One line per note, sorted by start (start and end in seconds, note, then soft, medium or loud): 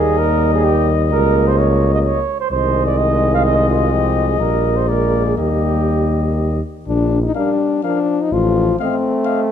0.00 1.14 D#2 medium
0.00 2.22 G3 medium
0.00 0.95 A#3 soft
0.00 0.19 G#4 medium
0.00 2.21 D#5 medium
0.18 0.53 A#4 medium
0.54 0.66 G#4 medium
0.64 0.88 G4 medium
1.12 2.25 C#2 medium
1.12 2.23 A#3 medium
1.12 1.49 A#4 medium
1.47 1.60 C5 medium
1.58 1.93 C#5 medium
1.94 1.99 D#5 medium
2.05 2.39 C#5 medium
2.40 2.50 C5 medium
2.51 4.36 C2 medium
2.51 3.89 D#3 medium
2.51 4.41 G#3 medium
2.51 2.86 C5 medium
2.51 4.90 D#5 medium
2.86 2.99 D5 medium
2.97 3.33 D#5 medium
3.34 3.44 F5 medium
3.45 3.68 D#5 medium
3.69 3.95 F4 medium
3.93 4.42 F3 soft
3.93 4.28 G4 medium
4.29 4.40 G#4 soft
4.40 5.36 A#1 soft
4.40 4.90 G3 soft
4.40 6.63 A#3 soft
4.40 4.78 A#4 medium
4.76 4.88 C5 soft
4.89 5.38 G#3 soft
4.89 5.25 A#4 medium
4.89 5.37 D5 soft
5.25 5.38 G#4 soft
5.38 6.60 D#2 soft
5.38 6.61 G3 soft
5.38 6.61 G4 soft
5.38 6.61 D#5 soft
6.87 7.27 A#1 medium
6.87 7.20 D4 medium
7.23 7.35 D#4 medium
7.35 7.85 G3 medium
7.35 7.83 D4 medium
7.35 7.51 A#4 soft
7.35 7.51 F5 soft
7.83 8.32 F3 soft
7.83 8.23 D4 medium
7.83 7.99 A#4 soft
7.83 7.99 F5 soft
8.21 8.34 D#4 medium
8.31 8.72 A1 medium
8.31 8.79 F3 medium
8.31 8.79 F4 medium
8.79 9.52 A3 medium
8.79 9.49 C4 medium
8.79 8.97 D#5 soft
8.79 8.95 F5 soft
9.25 9.43 D#5 soft
9.25 9.41 F5 soft